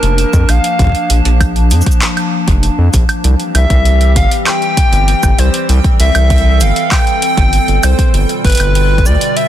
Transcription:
0.00 0.24 F1 loud
0.00 3.20 F3 medium
0.00 3.20 A#3 medium
0.00 3.20 D4 medium
0.00 0.50 A#4 loud
0.00 3.20 A5 medium
0.00 closed hi-hat medium
0.18 closed hi-hat medium
0.33 0.44 F2 loud
0.33 kick loud
0.33 closed hi-hat soft
0.33 cabasa medium
0.49 0.60 A#1 medium
0.49 1.10 F5 loud
0.49 closed hi-hat medium
0.49 high woodblock medium
0.64 closed hi-hat medium
0.79 0.90 A#1 loud
0.79 kick loud
0.79 closed hi-hat medium
0.82 kick loud
0.84 kick medium
0.87 kick medium
0.89 kick medium
0.92 kick soft
0.92 closed hi-hat soft
1.10 1.21 A#1 loud
1.10 closed hi-hat medium
1.25 1.73 A#1 medium
1.25 closed hi-hat medium
1.40 kick loud
1.40 closed hi-hat medium
1.40 high woodblock medium
1.56 closed hi-hat soft
1.71 1.82 F2 loud
1.71 closed hi-hat medium
1.71 cabasa medium
1.81 cabasa medium
1.86 kick loud
1.86 closed hi-hat medium
1.91 cabasa soft
2.02 clap loud
2.02 closed hi-hat medium
2.17 closed hi-hat soft
2.17 high woodblock medium
2.48 2.69 F1 loud
2.48 kick loud
2.48 closed hi-hat soft
2.63 closed hi-hat medium
2.78 2.89 F2 medium
2.94 3.04 A#1 medium
2.94 kick loud
2.94 closed hi-hat medium
2.94 cabasa medium
3.09 closed hi-hat medium
3.09 high woodblock medium
3.24 3.35 C2 loud
3.24 8.10 E3 medium
3.24 9.48 G3 medium
3.24 8.10 C4 medium
3.24 5.67 G4 medium
3.24 9.48 G5 medium
3.24 closed hi-hat soft
3.40 closed hi-hat soft
3.55 3.66 C2 loud
3.55 4.12 E5 loud
3.55 closed hi-hat medium
3.55 high woodblock soft
3.70 4.18 C2 medium
3.70 kick loud
3.70 closed hi-hat soft
3.85 closed hi-hat soft
4.01 closed hi-hat soft
4.16 4.27 G1 loud
4.16 4.30 F5 loud
4.16 kick loud
4.16 closed hi-hat medium
4.31 closed hi-hat medium
4.47 5.40 G5 loud
4.47 clap loud
4.47 closed hi-hat medium
4.47 high woodblock medium
4.62 closed hi-hat soft
4.77 kick loud
4.77 closed hi-hat medium
4.92 5.14 G1 loud
4.92 closed hi-hat medium
5.08 closed hi-hat soft
5.23 5.34 G1 loud
5.23 kick loud
5.23 closed hi-hat soft
5.23 cabasa medium
5.23 high woodblock soft
5.38 5.49 C2 medium
5.38 5.69 C5 medium
5.38 closed hi-hat medium
5.54 closed hi-hat soft
5.69 5.80 C2 loud
5.69 8.12 A4 medium
5.69 closed hi-hat medium
5.84 kick loud
5.84 closed hi-hat soft
6.00 6.11 C2 loud
6.00 6.63 E5 loud
6.00 closed hi-hat medium
6.15 6.62 C2 medium
6.15 closed hi-hat medium
6.15 high woodblock medium
6.30 kick loud
6.30 closed hi-hat soft
6.38 closed hi-hat soft
6.61 6.72 G1 loud
6.61 6.93 F5 loud
6.61 closed hi-hat medium
6.61 cabasa medium
6.76 closed hi-hat medium
6.92 7.85 G5 loud
6.92 kick loud
6.92 clap loud
6.92 closed hi-hat medium
6.92 high woodblock soft
6.94 high woodblock soft
6.99 high woodblock soft
7.02 high woodblock soft
7.04 closed hi-hat soft
7.04 high woodblock soft
7.22 closed hi-hat medium
7.37 7.59 G1 loud
7.37 kick loud
7.37 closed hi-hat soft
7.53 closed hi-hat medium
7.68 7.79 G1 loud
7.68 closed hi-hat soft
7.83 7.94 C2 medium
7.83 8.14 C5 medium
7.83 closed hi-hat medium
7.83 cabasa medium
7.83 high woodblock medium
7.99 kick loud
7.99 closed hi-hat medium
8.14 8.25 G1 loud
8.14 9.48 B2 medium
8.14 9.48 D3 medium
8.14 9.48 F4 medium
8.14 closed hi-hat medium
8.29 closed hi-hat soft
8.45 8.55 G1 loud
8.45 9.07 B4 loud
8.45 kick loud
8.45 closed hi-hat soft
8.47 closed hi-hat soft
8.50 closed hi-hat medium
8.52 closed hi-hat medium
8.55 closed hi-hat medium
8.57 9.07 G1 medium
8.57 closed hi-hat medium
8.60 closed hi-hat soft
8.60 high woodblock medium
8.75 closed hi-hat soft
8.98 kick loud
8.98 closed hi-hat soft
9.06 9.17 D2 loud
9.06 9.38 D5 loud
9.06 cabasa medium
9.21 closed hi-hat medium
9.36 9.48 E5 loud
9.36 closed hi-hat medium

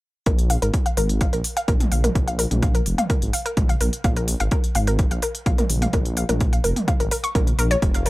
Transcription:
0.26 0.57 A#1 medium
0.26 0.38 A#4 medium
0.26 kick loud
0.26 closed hi-hat medium
0.39 closed hi-hat medium
0.50 0.62 F5 medium
0.50 open hi-hat medium
0.62 0.71 G#1 medium
0.62 0.73 A#4 medium
0.62 closed hi-hat medium
0.74 kick loud
0.74 closed hi-hat medium
0.86 0.97 F5 medium
0.86 closed hi-hat medium
0.97 1.28 G#1 medium
0.97 1.09 A#4 medium
0.97 open hi-hat medium
1.09 closed hi-hat medium
1.21 1.33 F5 medium
1.21 kick loud
1.21 closed hi-hat medium
1.33 1.41 A#1 medium
1.33 1.44 A#4 medium
1.33 closed hi-hat medium
1.44 open hi-hat loud
1.57 1.68 F5 medium
1.57 closed hi-hat medium
1.68 1.85 A#1 loud
1.68 1.80 A#4 medium
1.68 kick loud
1.68 closed hi-hat medium
1.80 closed hi-hat medium
1.80 mid tom medium
1.92 2.09 A#1 medium
1.92 2.03 F5 medium
1.92 open hi-hat loud
2.04 2.15 A#4 medium
2.04 closed hi-hat medium
2.04 mid tom medium
2.15 2.46 A#1 medium
2.15 kick loud
2.15 closed hi-hat medium
2.28 2.38 F5 medium
2.28 closed hi-hat medium
2.39 2.51 A#4 medium
2.39 open hi-hat loud
2.51 2.81 A#1 medium
2.51 closed hi-hat medium
2.51 mid tom medium
2.62 2.74 F5 medium
2.62 kick loud
2.62 closed hi-hat soft
2.75 2.86 A#4 medium
2.75 closed hi-hat medium
2.86 2.95 F1 medium
2.86 open hi-hat loud
2.98 3.09 F5 medium
2.98 closed hi-hat medium
2.98 mid tom medium
3.10 3.21 A#4 medium
3.10 kick loud
3.10 closed hi-hat medium
3.22 3.30 G#1 medium
3.22 closed hi-hat medium
3.33 3.45 F5 medium
3.33 open hi-hat loud
3.46 3.56 A#4 medium
3.46 closed hi-hat medium
3.57 3.75 A#1 medium
3.57 kick loud
3.57 closed hi-hat medium
3.57 mid tom medium
3.69 3.80 F5 medium
3.69 closed hi-hat medium
3.81 3.90 A#1 medium
3.81 3.92 A#4 medium
3.81 open hi-hat loud
3.93 closed hi-hat medium
4.04 4.35 A#1 medium
4.04 4.16 F5 medium
4.04 kick loud
4.04 closed hi-hat soft
4.16 4.27 A#4 medium
4.16 closed hi-hat medium
4.28 open hi-hat loud
4.40 4.49 G#1 medium
4.40 4.51 F5 medium
4.40 closed hi-hat medium
4.51 4.63 A#4 medium
4.51 kick loud
4.51 closed hi-hat soft
4.64 closed hi-hat soft
4.75 5.06 G#1 medium
4.75 4.87 F5 medium
4.75 open hi-hat loud
4.87 4.98 A#4 medium
4.87 closed hi-hat soft
4.99 kick loud
4.99 closed hi-hat medium
5.11 5.19 A#1 medium
5.11 5.22 F5 medium
5.11 closed hi-hat soft
5.22 5.34 A#4 medium
5.22 open hi-hat loud
5.35 closed hi-hat soft
5.46 5.64 A#1 loud
5.46 5.58 F5 medium
5.46 kick loud
5.46 closed hi-hat soft
5.58 5.69 A#4 medium
5.58 closed hi-hat soft
5.58 mid tom medium
5.70 5.87 A#1 loud
5.70 open hi-hat loud
5.82 5.93 F5 medium
5.82 closed hi-hat medium
5.82 mid tom medium
5.93 6.24 A#1 medium
5.93 6.05 A#4 medium
5.93 kick loud
5.93 closed hi-hat soft
6.05 closed hi-hat soft
6.17 6.29 F5 medium
6.17 open hi-hat loud
6.29 6.59 A#1 medium
6.29 6.40 A#4 medium
6.29 closed hi-hat medium
6.29 mid tom medium
6.41 kick loud
6.41 closed hi-hat soft
6.53 6.64 F5 medium
6.53 closed hi-hat medium
6.64 6.73 F1 medium
6.64 6.76 A#4 medium
6.64 open hi-hat loud
6.76 closed hi-hat soft
6.76 mid tom medium
6.88 6.99 F5 medium
6.88 kick loud
6.88 closed hi-hat soft
7.00 7.08 G#1 medium
7.00 7.10 A#4 medium
7.00 closed hi-hat soft
7.11 7.17 A#4 medium
7.11 open hi-hat loud
7.24 7.34 C#6 medium
7.24 closed hi-hat soft
7.35 7.52 A#1 loud
7.35 7.44 A#4 medium
7.35 kick loud
7.35 closed hi-hat soft
7.35 mid tom medium
7.47 closed hi-hat medium
7.59 7.76 A#1 medium
7.59 7.64 A#4 loud
7.59 open hi-hat loud
7.71 7.76 C#5 medium
7.71 closed hi-hat soft
7.82 8.10 F1 loud
7.82 kick loud
7.82 closed hi-hat medium
7.94 8.05 F5 medium
7.94 closed hi-hat medium
8.06 8.10 A#4 medium
8.06 open hi-hat loud

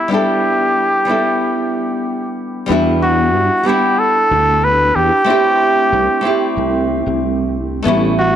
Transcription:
0.00 0.12 E4 medium
0.08 1.03 G3 medium
0.08 1.04 B3 medium
0.08 1.04 D4 medium
0.12 1.05 E4 medium
0.12 2.34 G4 medium
0.12 1.06 A4 medium
1.05 2.64 G3 medium
1.05 2.65 B3 medium
1.05 2.66 D4 medium
1.09 2.66 E4 medium
1.09 2.67 A4 medium
2.66 3.34 E2 loud
2.66 3.61 G3 medium
2.66 3.62 B3 medium
2.66 3.62 D4 medium
2.70 3.63 E4 medium
2.70 3.64 F#4 loud
3.02 3.68 F#4 medium
3.34 3.48 G2 loud
3.63 5.22 G3 medium
3.63 5.23 B3 medium
3.63 5.24 D4 medium
3.63 4.01 G4 medium
3.68 5.25 E4 medium
3.68 5.25 F#5 medium
3.99 4.66 A4 loud
4.31 4.90 D2 medium
4.64 4.97 B4 loud
4.95 5.09 E2 medium
4.95 6.89 G4 loud
5.24 6.19 A3 medium
5.24 6.20 C4 medium
5.24 6.21 D4 medium
5.29 6.21 E4 medium
5.29 6.22 G4 loud
5.92 6.06 C2 loud
6.21 7.80 A3 medium
6.21 7.81 C4 medium
6.21 7.82 D4 medium
6.25 7.83 E4 medium
6.25 7.83 G4 medium
6.57 7.00 C2 medium
7.06 7.80 C2 medium
7.82 8.36 A1 loud
7.82 8.36 A3 medium
7.82 8.36 B3 medium
7.82 8.36 C#4 medium
7.87 8.36 G3 loud
7.87 8.36 E4 medium
8.18 8.36 F#4 medium

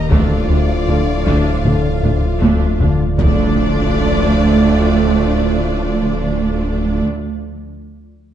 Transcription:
0.00 0.13 D#1 medium
0.00 0.11 D#5 medium
0.10 3.18 D1 medium
0.10 0.34 D2 loud
0.10 0.19 D2 medium
0.10 2.87 A2 medium
0.10 2.83 F3 medium
0.10 3.18 F3 medium
0.10 2.87 A3 medium
0.10 0.47 A3 medium
0.10 3.18 A3 medium
0.10 2.83 D4 medium
0.10 0.47 D4 medium
0.10 2.95 F4 medium
0.10 3.18 F4 medium
0.10 2.42 D5 loud
0.10 3.18 D5 medium
0.10 2.99 F5 medium
0.10 taiko loud
0.49 0.57 D2 medium
0.49 0.73 D2 medium
0.49 0.58 D2 medium
0.49 0.58 A3 medium
0.49 0.58 D4 medium
0.87 0.95 D2 medium
0.87 0.96 D2 medium
0.87 1.11 D3 medium
0.87 0.96 A3 medium
0.87 0.96 D4 soft
1.26 1.34 D2 medium
1.26 1.50 D2 loud
1.26 1.34 D2 medium
1.26 1.63 A3 medium
1.26 1.63 D4 medium
1.26 taiko medium
1.64 1.72 D2 medium
1.64 1.73 D2 medium
1.64 1.88 D3 medium
1.64 1.73 A3 soft
1.64 1.73 D4 medium
1.64 taiko low-mid medium
2.03 2.11 D2 soft
2.03 2.26 D2 medium
2.03 2.11 D2 soft
2.03 2.11 A3 medium
2.03 2.11 D4 medium
2.03 taiko low-mid medium
2.41 2.49 D2 medium
2.41 2.50 D2 medium
2.41 2.65 D2 loud
2.41 2.78 A3 medium
2.41 2.78 D4 medium
2.41 taiko high medium
2.80 2.88 D2 medium
2.80 2.89 D2 medium
2.80 3.04 D3 medium
2.80 2.88 A3 medium
2.80 2.88 D4 medium
2.80 taiko low medium
3.18 7.03 D1 medium
3.18 7.03 D2 medium
3.18 7.03 A2 medium
3.18 7.03 F3 medium
3.18 7.03 A3 medium
3.18 7.03 D4 medium
3.18 7.03 F4 medium
3.18 7.02 D5 loud
3.18 7.03 D5 medium
3.18 taiko loud
3.18 impact medium

